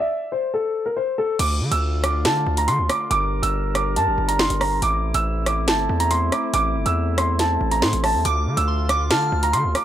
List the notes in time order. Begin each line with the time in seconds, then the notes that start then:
0.00 E5
0.32 C5
0.54 A4
0.86 A#4
0.96 C5
1.18 A4
1.39 D2 D3 A3 F4 D6, closed hi-hat, crash
1.61 D3
1.71 D2 E6, closed hi-hat
2.04 D6, cross-stick, closed hi-hat
2.25 D3 A5, snare, closed hi-hat
2.46 D2
2.57 A#5, closed hi-hat
2.68 D3 C6, closed hi-hat
2.79 D2
2.89 D6, cross-stick, closed hi-hat
3.11 G1 G3 D4 A#4 D6, closed hi-hat
3.43 G1 E6, closed hi-hat
3.75 D6, cross-stick, closed hi-hat
3.96 G2 A5, closed hi-hat
4.07 G1
4.18 G1
4.28 A#5, closed hi-hat
4.39 C6, snare
4.50 G1, closed hi-hat
4.61 A#5, cross-stick, open hi-hat
4.82 A1 A3 C4 E4 D6, closed hi-hat
5.14 A1 E6, closed hi-hat
5.46 D6, cross-stick, closed hi-hat
5.68 G1 A5, snare, closed hi-hat
5.89 E2
6.00 A#5, closed hi-hat
6.11 C6, closed hi-hat
6.32 D6, cross-stick, closed hi-hat
6.54 A1 D6, closed hi-hat
6.75 G1
6.86 E2 E6, closed hi-hat
7.18 C6, cross-stick, closed hi-hat
7.39 A5, snare, closed hi-hat
7.61 A1
7.71 A#5, closed hi-hat
7.82 A2 C6, snare
7.93 A1, closed hi-hat
8.04 A5, cross-stick, open hi-hat
8.14 E2
8.25 D2 D3 F4 D6, closed hi-hat
8.46 D3
8.57 D2 E6, closed hi-hat
8.68 C6
8.89 D6, cross-stick, closed hi-hat
9.10 D3 A5 F6, snare, closed hi-hat
9.32 D2
9.43 A#5, closed hi-hat
9.53 D3 C6, closed hi-hat
9.64 D2
9.75 D6, cross-stick, closed hi-hat